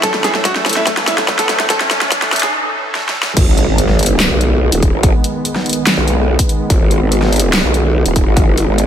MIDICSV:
0, 0, Header, 1, 7, 480
1, 0, Start_track
1, 0, Tempo, 416667
1, 39, Time_signature, 4, 2, 24, 8
1, 10212, End_track
2, 0, Start_track
2, 0, Title_t, "Supersaw synth"
2, 0, Program_c, 0, 81
2, 0, Note_on_c, 0, 45, 85
2, 0, Note_on_c, 0, 52, 74
2, 0, Note_on_c, 0, 61, 76
2, 0, Note_on_c, 0, 69, 75
2, 0, Note_on_c, 0, 76, 91
2, 3833, Note_off_c, 0, 45, 0
2, 3833, Note_off_c, 0, 52, 0
2, 3833, Note_off_c, 0, 61, 0
2, 3833, Note_off_c, 0, 69, 0
2, 3833, Note_off_c, 0, 76, 0
2, 3878, Note_on_c, 0, 51, 84
2, 3878, Note_on_c, 0, 56, 76
2, 3878, Note_on_c, 0, 59, 89
2, 10212, Note_off_c, 0, 51, 0
2, 10212, Note_off_c, 0, 56, 0
2, 10212, Note_off_c, 0, 59, 0
2, 10212, End_track
3, 0, Start_track
3, 0, Title_t, "Grand piano"
3, 0, Program_c, 1, 0
3, 39, Note_on_c, 1, 69, 98
3, 113, Note_off_c, 1, 69, 0
3, 161, Note_on_c, 1, 57, 64
3, 233, Note_off_c, 1, 57, 0
3, 278, Note_on_c, 1, 68, 92
3, 353, Note_off_c, 1, 68, 0
3, 401, Note_on_c, 1, 57, 61
3, 473, Note_off_c, 1, 57, 0
3, 517, Note_on_c, 1, 66, 91
3, 593, Note_off_c, 1, 66, 0
3, 641, Note_on_c, 1, 57, 63
3, 713, Note_off_c, 1, 57, 0
3, 757, Note_on_c, 1, 57, 67
3, 832, Note_off_c, 1, 57, 0
3, 879, Note_on_c, 1, 64, 94
3, 952, Note_off_c, 1, 64, 0
3, 997, Note_on_c, 1, 57, 65
3, 1073, Note_off_c, 1, 57, 0
3, 1119, Note_on_c, 1, 57, 65
3, 1192, Note_off_c, 1, 57, 0
3, 1237, Note_on_c, 1, 64, 93
3, 1312, Note_off_c, 1, 64, 0
3, 1360, Note_on_c, 1, 57, 67
3, 1432, Note_off_c, 1, 57, 0
3, 1478, Note_on_c, 1, 57, 65
3, 1553, Note_off_c, 1, 57, 0
3, 1600, Note_on_c, 1, 69, 93
3, 1672, Note_off_c, 1, 69, 0
3, 1719, Note_on_c, 1, 57, 65
3, 1793, Note_off_c, 1, 57, 0
3, 1841, Note_on_c, 1, 57, 63
3, 1913, Note_off_c, 1, 57, 0
3, 1958, Note_on_c, 1, 69, 96
3, 2033, Note_off_c, 1, 69, 0
3, 2080, Note_on_c, 1, 57, 65
3, 2153, Note_off_c, 1, 57, 0
3, 2199, Note_on_c, 1, 57, 68
3, 2273, Note_off_c, 1, 57, 0
3, 2320, Note_on_c, 1, 57, 62
3, 2392, Note_off_c, 1, 57, 0
3, 2560, Note_on_c, 1, 57, 67
3, 2632, Note_off_c, 1, 57, 0
3, 2679, Note_on_c, 1, 57, 66
3, 2753, Note_off_c, 1, 57, 0
3, 2800, Note_on_c, 1, 68, 94
3, 2872, Note_off_c, 1, 68, 0
3, 10212, End_track
4, 0, Start_track
4, 0, Title_t, "Wobble bass"
4, 0, Program_c, 2, 39
4, 3879, Note_on_c, 2, 32, 100
4, 3981, Note_off_c, 2, 32, 0
4, 4001, Note_on_c, 2, 32, 92
4, 4221, Note_off_c, 2, 32, 0
4, 4241, Note_on_c, 2, 32, 93
4, 4941, Note_off_c, 2, 32, 0
4, 4961, Note_on_c, 2, 35, 96
4, 5422, Note_off_c, 2, 35, 0
4, 5441, Note_on_c, 2, 27, 94
4, 5662, Note_off_c, 2, 27, 0
4, 5681, Note_on_c, 2, 32, 101
4, 5901, Note_off_c, 2, 32, 0
4, 6881, Note_on_c, 2, 35, 96
4, 7341, Note_off_c, 2, 35, 0
4, 7719, Note_on_c, 2, 32, 101
4, 7821, Note_off_c, 2, 32, 0
4, 7841, Note_on_c, 2, 32, 92
4, 8061, Note_off_c, 2, 32, 0
4, 8082, Note_on_c, 2, 32, 97
4, 8782, Note_off_c, 2, 32, 0
4, 8801, Note_on_c, 2, 35, 96
4, 9261, Note_off_c, 2, 35, 0
4, 9281, Note_on_c, 2, 27, 99
4, 9501, Note_off_c, 2, 27, 0
4, 9521, Note_on_c, 2, 32, 99
4, 9741, Note_off_c, 2, 32, 0
4, 9761, Note_on_c, 2, 30, 95
4, 9981, Note_off_c, 2, 30, 0
4, 10001, Note_on_c, 2, 32, 95
4, 10212, Note_off_c, 2, 32, 0
4, 10212, End_track
5, 0, Start_track
5, 0, Title_t, "Impact"
5, 0, Program_c, 3, 103
5, 3879, Note_on_c, 3, 60, 75
5, 5799, Note_off_c, 3, 60, 0
5, 10212, End_track
6, 0, Start_track
6, 0, Title_t, "Riser"
6, 0, Program_c, 4, 103
6, 0, Note_on_c, 4, 60, 79
6, 2919, Note_off_c, 4, 60, 0
6, 10212, End_track
7, 0, Start_track
7, 0, Title_t, "Drums"
7, 39, Note_on_c, 9, 36, 97
7, 39, Note_on_c, 9, 38, 89
7, 39, Note_on_c, 9, 42, 83
7, 154, Note_off_c, 9, 36, 0
7, 154, Note_off_c, 9, 38, 0
7, 154, Note_off_c, 9, 42, 0
7, 161, Note_on_c, 9, 38, 81
7, 276, Note_off_c, 9, 38, 0
7, 279, Note_on_c, 9, 38, 91
7, 279, Note_on_c, 9, 42, 56
7, 395, Note_off_c, 9, 38, 0
7, 395, Note_off_c, 9, 42, 0
7, 401, Note_on_c, 9, 38, 81
7, 517, Note_off_c, 9, 38, 0
7, 519, Note_on_c, 9, 36, 97
7, 519, Note_on_c, 9, 38, 88
7, 519, Note_on_c, 9, 42, 81
7, 634, Note_off_c, 9, 36, 0
7, 634, Note_off_c, 9, 38, 0
7, 634, Note_off_c, 9, 42, 0
7, 641, Note_on_c, 9, 38, 84
7, 756, Note_off_c, 9, 38, 0
7, 759, Note_on_c, 9, 38, 93
7, 759, Note_on_c, 9, 42, 50
7, 800, Note_off_c, 9, 42, 0
7, 800, Note_on_c, 9, 42, 66
7, 839, Note_off_c, 9, 42, 0
7, 839, Note_on_c, 9, 42, 85
7, 874, Note_off_c, 9, 38, 0
7, 881, Note_on_c, 9, 38, 84
7, 954, Note_off_c, 9, 42, 0
7, 996, Note_off_c, 9, 38, 0
7, 999, Note_on_c, 9, 36, 100
7, 999, Note_on_c, 9, 38, 98
7, 999, Note_on_c, 9, 42, 78
7, 1114, Note_off_c, 9, 36, 0
7, 1114, Note_off_c, 9, 38, 0
7, 1114, Note_off_c, 9, 42, 0
7, 1121, Note_on_c, 9, 38, 86
7, 1236, Note_off_c, 9, 38, 0
7, 1239, Note_on_c, 9, 38, 99
7, 1239, Note_on_c, 9, 42, 56
7, 1354, Note_off_c, 9, 38, 0
7, 1354, Note_off_c, 9, 42, 0
7, 1361, Note_on_c, 9, 38, 86
7, 1476, Note_off_c, 9, 38, 0
7, 1479, Note_on_c, 9, 36, 101
7, 1479, Note_on_c, 9, 38, 99
7, 1594, Note_off_c, 9, 36, 0
7, 1594, Note_off_c, 9, 38, 0
7, 1601, Note_on_c, 9, 38, 86
7, 1601, Note_on_c, 9, 42, 80
7, 1716, Note_off_c, 9, 38, 0
7, 1716, Note_off_c, 9, 42, 0
7, 1719, Note_on_c, 9, 38, 102
7, 1719, Note_on_c, 9, 42, 55
7, 1834, Note_off_c, 9, 38, 0
7, 1834, Note_off_c, 9, 42, 0
7, 1840, Note_on_c, 9, 38, 89
7, 1956, Note_off_c, 9, 38, 0
7, 1958, Note_on_c, 9, 38, 102
7, 1958, Note_on_c, 9, 42, 84
7, 1959, Note_on_c, 9, 36, 101
7, 2073, Note_off_c, 9, 38, 0
7, 2073, Note_off_c, 9, 42, 0
7, 2074, Note_off_c, 9, 36, 0
7, 2080, Note_on_c, 9, 38, 88
7, 2196, Note_off_c, 9, 38, 0
7, 2199, Note_on_c, 9, 38, 106
7, 2199, Note_on_c, 9, 42, 55
7, 2314, Note_off_c, 9, 38, 0
7, 2314, Note_off_c, 9, 42, 0
7, 2321, Note_on_c, 9, 38, 90
7, 2436, Note_off_c, 9, 38, 0
7, 2439, Note_on_c, 9, 36, 102
7, 2439, Note_on_c, 9, 38, 104
7, 2439, Note_on_c, 9, 42, 81
7, 2554, Note_off_c, 9, 36, 0
7, 2554, Note_off_c, 9, 38, 0
7, 2554, Note_off_c, 9, 42, 0
7, 2561, Note_on_c, 9, 38, 91
7, 2676, Note_off_c, 9, 38, 0
7, 2679, Note_on_c, 9, 38, 109
7, 2679, Note_on_c, 9, 42, 53
7, 2720, Note_off_c, 9, 42, 0
7, 2720, Note_on_c, 9, 42, 68
7, 2759, Note_off_c, 9, 42, 0
7, 2759, Note_on_c, 9, 42, 86
7, 2794, Note_off_c, 9, 38, 0
7, 2801, Note_off_c, 9, 42, 0
7, 2801, Note_on_c, 9, 38, 94
7, 2801, Note_on_c, 9, 42, 40
7, 2916, Note_off_c, 9, 38, 0
7, 2916, Note_off_c, 9, 42, 0
7, 3399, Note_on_c, 9, 38, 68
7, 3514, Note_off_c, 9, 38, 0
7, 3559, Note_on_c, 9, 38, 80
7, 3674, Note_off_c, 9, 38, 0
7, 3719, Note_on_c, 9, 38, 97
7, 3834, Note_off_c, 9, 38, 0
7, 3879, Note_on_c, 9, 36, 120
7, 3879, Note_on_c, 9, 42, 84
7, 3879, Note_on_c, 9, 49, 106
7, 3994, Note_off_c, 9, 36, 0
7, 3994, Note_off_c, 9, 42, 0
7, 3994, Note_off_c, 9, 49, 0
7, 4119, Note_on_c, 9, 42, 55
7, 4234, Note_off_c, 9, 42, 0
7, 4358, Note_on_c, 9, 42, 79
7, 4474, Note_off_c, 9, 42, 0
7, 4481, Note_on_c, 9, 38, 36
7, 4596, Note_off_c, 9, 38, 0
7, 4598, Note_on_c, 9, 42, 53
7, 4639, Note_off_c, 9, 42, 0
7, 4639, Note_on_c, 9, 42, 66
7, 4678, Note_off_c, 9, 42, 0
7, 4678, Note_on_c, 9, 42, 85
7, 4794, Note_off_c, 9, 42, 0
7, 4839, Note_on_c, 9, 38, 119
7, 4839, Note_on_c, 9, 39, 94
7, 4839, Note_on_c, 9, 42, 80
7, 4954, Note_off_c, 9, 38, 0
7, 4954, Note_off_c, 9, 39, 0
7, 4954, Note_off_c, 9, 42, 0
7, 5079, Note_on_c, 9, 42, 57
7, 5194, Note_off_c, 9, 42, 0
7, 5441, Note_on_c, 9, 42, 83
7, 5556, Note_off_c, 9, 42, 0
7, 5558, Note_on_c, 9, 42, 56
7, 5559, Note_on_c, 9, 36, 62
7, 5673, Note_off_c, 9, 42, 0
7, 5674, Note_off_c, 9, 36, 0
7, 5798, Note_on_c, 9, 42, 82
7, 5799, Note_on_c, 9, 36, 124
7, 5914, Note_off_c, 9, 36, 0
7, 5914, Note_off_c, 9, 42, 0
7, 6039, Note_on_c, 9, 42, 55
7, 6154, Note_off_c, 9, 42, 0
7, 6279, Note_on_c, 9, 42, 78
7, 6394, Note_off_c, 9, 42, 0
7, 6401, Note_on_c, 9, 38, 39
7, 6516, Note_off_c, 9, 38, 0
7, 6519, Note_on_c, 9, 42, 51
7, 6560, Note_off_c, 9, 42, 0
7, 6560, Note_on_c, 9, 42, 66
7, 6599, Note_off_c, 9, 42, 0
7, 6599, Note_on_c, 9, 42, 82
7, 6715, Note_off_c, 9, 42, 0
7, 6759, Note_on_c, 9, 38, 123
7, 6759, Note_on_c, 9, 39, 94
7, 6759, Note_on_c, 9, 42, 79
7, 6874, Note_off_c, 9, 38, 0
7, 6874, Note_off_c, 9, 39, 0
7, 6874, Note_off_c, 9, 42, 0
7, 6999, Note_on_c, 9, 42, 54
7, 7115, Note_off_c, 9, 42, 0
7, 7361, Note_on_c, 9, 36, 65
7, 7361, Note_on_c, 9, 42, 78
7, 7476, Note_off_c, 9, 36, 0
7, 7477, Note_off_c, 9, 42, 0
7, 7479, Note_on_c, 9, 42, 53
7, 7595, Note_off_c, 9, 42, 0
7, 7719, Note_on_c, 9, 36, 124
7, 7719, Note_on_c, 9, 42, 78
7, 7834, Note_off_c, 9, 36, 0
7, 7834, Note_off_c, 9, 42, 0
7, 7959, Note_on_c, 9, 42, 54
7, 8075, Note_off_c, 9, 42, 0
7, 8199, Note_on_c, 9, 42, 76
7, 8314, Note_off_c, 9, 42, 0
7, 8321, Note_on_c, 9, 38, 40
7, 8436, Note_off_c, 9, 38, 0
7, 8439, Note_on_c, 9, 42, 49
7, 8480, Note_off_c, 9, 42, 0
7, 8480, Note_on_c, 9, 42, 62
7, 8519, Note_off_c, 9, 42, 0
7, 8519, Note_on_c, 9, 42, 79
7, 8634, Note_off_c, 9, 42, 0
7, 8679, Note_on_c, 9, 38, 122
7, 8679, Note_on_c, 9, 39, 89
7, 8679, Note_on_c, 9, 42, 77
7, 8794, Note_off_c, 9, 38, 0
7, 8794, Note_off_c, 9, 39, 0
7, 8794, Note_off_c, 9, 42, 0
7, 8919, Note_on_c, 9, 42, 54
7, 9034, Note_off_c, 9, 42, 0
7, 9281, Note_on_c, 9, 42, 77
7, 9396, Note_off_c, 9, 42, 0
7, 9399, Note_on_c, 9, 36, 65
7, 9399, Note_on_c, 9, 42, 54
7, 9514, Note_off_c, 9, 36, 0
7, 9514, Note_off_c, 9, 42, 0
7, 9639, Note_on_c, 9, 36, 123
7, 9639, Note_on_c, 9, 42, 75
7, 9754, Note_off_c, 9, 36, 0
7, 9754, Note_off_c, 9, 42, 0
7, 9879, Note_on_c, 9, 42, 51
7, 9994, Note_off_c, 9, 42, 0
7, 10119, Note_on_c, 9, 42, 72
7, 10212, Note_off_c, 9, 42, 0
7, 10212, End_track
0, 0, End_of_file